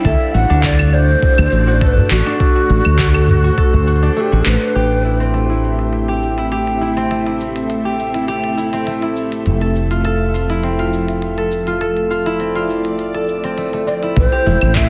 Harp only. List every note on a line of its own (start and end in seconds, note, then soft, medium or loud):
0.00 1.87 C4 medium
0.00 0.49 D4 medium
0.00 2.52 E4 medium
0.00 0.40 G4 medium
0.05 1.38 A4 loud
0.34 0.79 F#4 medium
0.50 2.26 D4 loud
0.64 2.39 A3 medium
0.79 1.67 F#4 medium
1.38 1.81 A4 medium
1.67 2.10 F#4 medium
1.81 3.14 A4 loud
2.10 2.55 F#4 medium
2.26 4.02 D4 loud
2.40 4.16 A3 medium
2.55 3.43 F#4 medium
3.14 3.57 A4 medium
3.44 3.87 F#4 medium
3.58 5.77 A4 loud
3.87 4.32 F#4 medium
4.03 6.82 D4 loud
4.16 5.34 A3 medium
4.32 4.81 F#4 medium
4.75 6.08 G4 medium
5.05 5.49 E4 medium
5.20 6.96 C4 medium
5.34 7.10 A3 medium
5.50 6.37 E4 medium
6.09 6.51 G4 medium
6.38 6.81 E4 medium
6.52 7.85 G4 medium
6.81 7.26 E4 medium
6.97 8.73 C4 medium
7.11 8.87 A3 medium
7.26 8.14 E4 medium
7.85 8.28 G4 medium
8.14 8.57 E4 medium
8.28 10.63 G4 medium
8.57 9.02 E4 medium
8.73 10.63 C4 medium
8.87 12.20 A3 medium
9.02 9.97 E4 medium
9.61 10.04 A4 medium
9.91 10.34 F4 medium
10.05 11.37 A4 medium
10.34 10.56 F4 medium
10.50 10.85 E4 medium
10.63 12.40 C4 medium
10.79 11.67 F4 medium
11.38 11.81 A4 medium
11.67 12.10 F4 medium
11.81 13.14 A4 medium
12.10 12.32 F4 medium
12.26 12.62 E4 loud
12.40 13.44 C4 medium
12.56 14.09 F4 medium
13.14 14.89 A4 medium
13.44 13.87 C4 medium
13.58 13.73 A3 medium
13.73 14.75 A3 medium
13.87 14.61 C4 medium
14.03 14.46 E4 medium
14.32 14.89 G4 medium
14.46 14.89 E4 medium
14.62 14.89 C4 medium
14.76 14.89 A3 medium